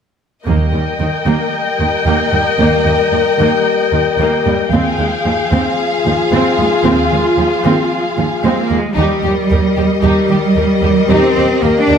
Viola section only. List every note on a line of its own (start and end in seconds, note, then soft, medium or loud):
0.47 0.72 A#3 soft
0.47 5.74 G5 soft
0.74 0.82 G3 soft
1.00 1.08 D#3 soft
1.26 1.51 A#3 soft
1.80 1.88 D#3 soft
2.07 2.31 A#3 soft
2.33 2.41 G3 soft
2.59 2.84 A#3 soft
2.86 2.94 G3 soft
3.12 3.20 D#3 soft
3.39 3.64 A#3 soft
3.93 4.01 D#3 soft
4.20 4.44 A#3 medium
4.46 4.54 G3 soft
4.72 4.97 C4 soft
4.99 5.07 G#3 soft
5.25 5.33 F3 soft
5.52 5.76 C4 soft
5.79 8.77 F4 medium
6.05 6.13 F3 soft
6.32 6.56 C4 medium
6.58 6.66 G#3 soft
6.85 7.09 C4 medium
7.12 7.20 G#3 soft
7.38 7.46 F3 soft
7.64 7.89 C4 soft
8.18 8.26 F3 soft
8.45 8.69 C4 soft
8.71 8.79 G#3 soft
8.98 9.22 G4 soft
9.25 9.33 G4 soft
9.50 9.58 G4 soft
9.77 9.85 G4 soft
10.03 10.28 G4 soft
10.30 10.38 G4 soft
10.57 10.65 G4 soft
10.84 10.92 G4 soft
11.11 11.35 G4 soft
11.37 11.45 G4 soft
11.63 11.71 G4 soft
11.89 11.97 G4 soft